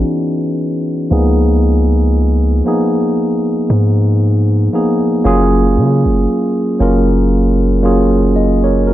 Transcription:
Already playing: E3 B3 C#4 D#4 F#4 G#4
1.10 C#2 F3 A#3 B3 D#4 G#4
2.65 F3 A#3 B3 D#4 G#4
3.70 G#2
4.73 F3 A#3 B3 D#4 G#4
5.24 F#1 F#3 A#3 C#4 F4 G#4
5.77 C#3
6.05 F#1
6.79 F#1 F#3 A#3 C#4 F4 A#4
7.83 F#3 A#3 C#4 F4 G#4
8.36 D#5
8.64 A#4 C#5
8.87 F#4 A#4

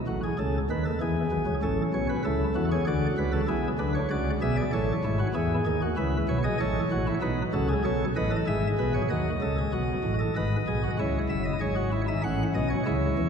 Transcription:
0.07 A1 A2 F#4
0.23 G#4
0.39 C#2 C#3 A4
0.70 D#2 D#3 B4
0.85 A4
1.01 E2 E3 G#4
1.31 B1 B2
1.46 C#2 C#3
1.62 A1 A2 C#4 A4
1.94 B1 B2 C#5
2.09 B4
2.25 C#2 C#3 E4 A4
2.55 E2 E3 F#4
2.71 G#4 C#5
2.87 D2 D3 F#4 D5
3.18 C#2 C#3 B4
3.33 A4
3.48 B1 B2 E4 G#4
3.79 D2 D3 D4 B4
3.95 C#5
4.10 C#2 C#3 F#4 D5
4.41 B1 B2 G#4 E5
4.57 D5
4.73 A1 A2 A4 C#5
5.04 G#1 G#2 E4
5.19 F#4
5.34 E2 E3 E4 G#4
5.66 D#2 D#3 G#4
5.82 F#4
5.97 C#2 C#3 E4 B4
6.28 B1 B2 C#5
6.44 G#4 D#5
6.60 A1 A2 A4 C#5
6.91 A1 A2 F#4
7.07 E4
7.22 B1 B2 D#4 B4
7.53 C#2 C#3 F#4 A4
7.68 G#4
7.84 B1 B2 A4 C#5
8.16 A1 A2 B4 D#5
8.31 A4
8.47 G#1 G#2 G#4 E5
8.79 B1 B2 B4
8.94 C#5
9.10 D#2 D#3 F#4 D#5
9.41 C#2 C#3 A4
9.58 G#4
9.73 B1 B2 F#4
10.04 A1 A2
10.20 A4
10.36 G#1 G#2 B4 D#5
10.67 B1 B2 G#4
10.83 F#4
10.99 C#2 C#3 E4 C#5
11.29 F#1 F#2 E5
11.45 D#5
11.60 G#1 G#2 G#4 C#5
11.76 F#4
11.92 E4
12.08 D#4 E5
12.23 A1 A2 C#4 F#5
12.55 B1 B2 D#5
12.70 C#5
12.86 C#2 C#3 E4 C#5
13.18 E2 E3

